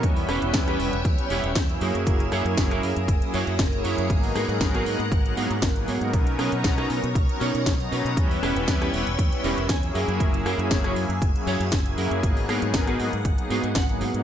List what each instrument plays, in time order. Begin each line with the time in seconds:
0.03 fingered electric bass E2, analog synth pad G3 B3 C#4 E4 B4, string machine C#5 G5 E6, kick, closed hi-hat
0.16 open hi-hat
0.29 fingered electric bass E1, clean electric guitar C#4 E4 G4 B4, cross-stick, open hi-hat
0.41 fingered electric bass E1, analog synth pad G3 B3 C#4 E4 B4, closed hi-hat
0.54 fingered electric bass E2, muted clean electric guitar stroke, kick, snare, closed hi-hat
0.68 clean electric guitar C#4 E4 G4 B4, cross-stick, closed hi-hat
0.79 fingered electric bass E1, analog synth pad G3 B3 C#4 E4 B4, open hi-hat
0.93 fingered electric bass E1, closed hi-hat
1.05 fingered electric bass E2, muted clean electric guitar stroke, kick, closed hi-hat
1.18 analog synth pad G3 B3 C#4 E4 B4, closed hi-hat
1.30 fingered electric bass E1, clean electric guitar C#4 E4 G4 C#5, open hi-hat
1.44 fingered electric bass E1, closed hi-hat
1.55 fingered electric bass E2, kick, snare, closed hi-hat
1.68 analog synth pad F#3 A#3 C#4 E4 G#4, closed hi-hat
1.81 fingered electric bass F#2, clean electric guitar E4 F#4 G#4 A#4, string machine A#4 G#5, open hi-hat
1.95 fingered electric bass F#2, closed hi-hat
2.06 fingered electric bass F#1, analog synth pad F#3 A#3 C#4 E4 G#4, kick, closed hi-hat
2.20 closed hi-hat
2.32 fingered electric bass F#2, clean electric guitar E4 F#4 G#4 C#5, cross-stick, open hi-hat
2.45 fingered electric bass F#2, analog synth pad F#3 A#3 C#4 E4 G#4, closed hi-hat
2.57 fingered electric bass F#1, muted clean electric guitar stroke, kick, snare, closed hi-hat
2.71 clean electric guitar E4 F#4 G#4 A#4, cross-stick, closed hi-hat
2.83 fingered electric bass F#2, analog synth pad F#3 A#3 C#4 E4 G#4, open hi-hat
2.96 fingered electric bass F#2, closed hi-hat
3.08 fingered electric bass F#1, muted clean electric guitar stroke, kick, closed hi-hat
3.21 analog synth pad F#3 A#3 C#4 E4 G#4, closed hi-hat
3.34 fingered electric bass F#2, clean electric guitar E4 F#4 G#4 C#5, open hi-hat
3.47 fingered electric bass F#2, closed hi-hat
3.59 fingered electric bass F#1, kick, snare, closed hi-hat
3.72 analog synth pad F#3 A#3 C#4 E4 G#4, closed hi-hat
3.84 fingered electric bass F#2, clean electric guitar E4 F#4 G#4 C#5, open hi-hat
3.98 fingered electric bass F#2, closed hi-hat
4.09 fingered electric bass G#1, analog synth pad F#3 A#3 B3 D#4 G#4, string machine F#5, kick, closed hi-hat
4.24 open hi-hat
4.35 fingered electric bass G#2, clean electric guitar B3 F#4 G#4 A#4, cross-stick, open hi-hat
4.48 fingered electric bass G#2, analog synth pad F#3 B3 D#4 G#4 A#4, closed hi-hat
4.61 fingered electric bass G#1, muted clean electric guitar stroke, kick, snare, closed hi-hat
4.74 clean electric guitar B3 F#4 G#4 A#4, cross-stick, closed hi-hat
4.86 fingered electric bass G#2, analog synth pad F#3 A#3 B3 D#4 G#4, open hi-hat
4.99 fingered electric bass G#2, closed hi-hat
5.12 fingered electric bass G#1, kick, closed hi-hat
5.25 analog synth pad F#3 A#3 B3 D#4 G#4, closed hi-hat
5.37 fingered electric bass G#2, analog synth pad F#3 A#3 B3 D#4 G#4, clean electric guitar B3 F#4 G#4 A#4, open hi-hat
5.50 fingered electric bass G#2, closed hi-hat
5.62 fingered electric bass G#1, kick, snare, closed hi-hat
5.76 analog synth pad F#3 A#3 B3 D#4 G#4, closed hi-hat
5.88 fingered electric bass G#2, clean electric guitar B3 F#4 G#4 C#5, open hi-hat
6.01 fingered electric bass G#2, analog synth pad F#3 A#3 B3 D#4 A#4, closed hi-hat
6.13 fingered electric bass B1, analog synth pad F#3 B3 C#4 D#4 A#4, string machine C#5 A#5 D#6, kick, closed hi-hat
6.27 closed hi-hat
6.39 fingered electric bass B2, clean electric guitar C#4 D#4 A#4 B4, cross-stick, open hi-hat
6.52 fingered electric bass B2, analog synth pad F#3 B3 C#4 D#4 A#5, closed hi-hat
6.64 fingered electric bass B1, kick, snare, closed hi-hat
6.78 clean electric guitar C#4 D#4 A#4 B4, cross-stick, closed hi-hat
6.90 fingered electric bass B2, analog synth pad F#3 B3 C#4 D#4 A#4, open hi-hat
7.04 fingered electric bass B2, closed hi-hat
7.15 fingered electric bass B1, kick, closed hi-hat
7.29 analog synth pad F#3 B3 C#4 D#4 A#4, closed hi-hat
7.40 fingered electric bass B2, clean electric guitar C#4 D#4 A#4 C#5, open hi-hat
7.55 fingered electric bass B2, closed hi-hat
7.66 fingered electric bass B1, kick, snare, closed hi-hat
7.79 analog synth pad F#3 B3 C#4 D#4 A#5, closed hi-hat
7.91 fingered electric bass B2, clean electric guitar C#4 D#4 A#4 B4, open hi-hat
8.05 fingered electric bass B2, closed hi-hat
8.17 fingered electric bass E2, analog synth pad G3 B3 C#4 E4 B4, string machine C#5 G5 E6, kick, closed hi-hat
8.31 open hi-hat
8.42 fingered electric bass E1, clean electric guitar C#4 E4 G4 B4, cross-stick, open hi-hat
8.55 fingered electric bass E1, analog synth pad G3 B3 C#4 E4 B4, closed hi-hat
8.68 fingered electric bass E2, kick, snare, closed hi-hat
8.81 clean electric guitar C#4 E4 G4 B4, cross-stick, closed hi-hat
8.93 fingered electric bass E1, analog synth pad G3 B3 C#4 E4 B4, open hi-hat
9.07 fingered electric bass E1, closed hi-hat
9.19 fingered electric bass E2, muted clean electric guitar stroke, kick, closed hi-hat
9.32 analog synth pad G3 B3 C#4 E4 B4, closed hi-hat
9.44 fingered electric bass E1, clean electric guitar C#4 E4 G4 A#4, open hi-hat
9.57 fingered electric bass E1, closed hi-hat
9.69 fingered electric bass E2, clean electric guitar G#5, kick, snare, closed hi-hat
9.82 analog synth pad F#3 A#3 C#4 E4 G#4, closed hi-hat
9.94 fingered electric bass F#2, clean electric guitar E4 F#4 G#4 A#4, string machine G#5 E6, open hi-hat
10.08 fingered electric bass F#2, closed hi-hat
10.19 fingered electric bass F#1, analog synth pad F#3 A#3 C#4 E4 G#4, kick, closed hi-hat
10.34 closed hi-hat
10.45 fingered electric bass F#2, clean electric guitar E4 F#4 G#4 A#4, cross-stick, open hi-hat
10.58 fingered electric bass F#2, analog synth pad F#3 A#3 C#4 E4 G#4, closed hi-hat
10.71 fingered electric bass F#1, muted clean electric guitar stroke, kick, snare, closed hi-hat
10.84 clean electric guitar E4 F#4 G#4 C#5, cross-stick, closed hi-hat
10.96 fingered electric bass F#2, analog synth pad F#3 A#3 C#4 E4 G#4, open hi-hat
11.09 fingered electric bass F#2, closed hi-hat
11.22 fingered electric bass F#1, muted clean electric guitar stroke, kick, closed hi-hat
11.34 analog synth pad F#3 A#3 C#4 E4 G#4, closed hi-hat
11.47 fingered electric bass F#2, clean electric guitar E4 F#4 G#4 C#5, open hi-hat
11.60 fingered electric bass F#2, closed hi-hat
11.72 fingered electric bass F#1, kick, snare, closed hi-hat
11.85 analog synth pad F#3 A#3 C#4 E4 G#4, closed hi-hat
11.98 fingered electric bass F#2, clean electric guitar E4 F#4 G#4 A#4, open hi-hat
12.11 fingered electric bass F#2, closed hi-hat
12.23 fingered electric bass G#1, analog synth pad F#3 A#3 B3 D#4 G#4, string machine F#5, kick, closed hi-hat
12.37 open hi-hat
12.49 fingered electric bass G#2, clean electric guitar B3 F#4 G#4 A#4, cross-stick, open hi-hat
12.61 fingered electric bass G#2, analog synth pad F#3 B3 D#4 G#4 A#4, closed hi-hat
12.74 fingered electric bass G#1, muted clean electric guitar stroke, kick, snare, closed hi-hat
12.87 clean electric guitar B3 F#4 G#4 B4, cross-stick, closed hi-hat
12.98 fingered electric bass G#2, analog synth pad F#3 A#3 B3 D#4 G#4, open hi-hat
13.13 fingered electric bass G#2, closed hi-hat
13.25 fingered electric bass G#1, muted clean electric guitar stroke, kick, closed hi-hat
13.37 analog synth pad F#3 A#3 B3 D#4 G#4, closed hi-hat
13.50 fingered electric bass G#2, analog synth pad F#3 A#3 B3 D#4 G#4, clean electric guitar B3 F#4 G#4 B4, open hi-hat
13.64 fingered electric bass G#2, closed hi-hat
13.75 fingered electric bass G#1, clean electric guitar F#5, kick, snare, closed hi-hat
13.88 analog synth pad F#3 A#3 B3 D#4 G#4, closed hi-hat
14.01 fingered electric bass G#2, clean electric guitar B3 F#4 G#4 B4, open hi-hat
14.14 fingered electric bass G#2, analog synth pad F#3 A#3 B3 D#4 A#4, closed hi-hat